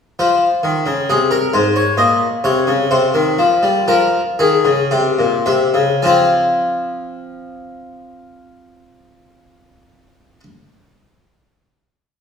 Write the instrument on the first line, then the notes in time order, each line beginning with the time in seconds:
harpsichord
0.19 F3 C5
0.63 D#3
0.86 C#3
1.10 C3 G#4
1.31 A#4
1.53 G#2 C5
1.76 C#5
1.97 A#2 D#5
2.44 C3 C#5
2.67 C#3
2.91 C3 C5
3.14 D#3
3.39 F3
3.63 G3
3.88 F3 A#4
4.39 D#3 G#4
4.65 C#3
4.91 C3 G4
5.19 A#2
5.46 C3 E5
5.74 C#3
6.02 F3 C4 F4 G#5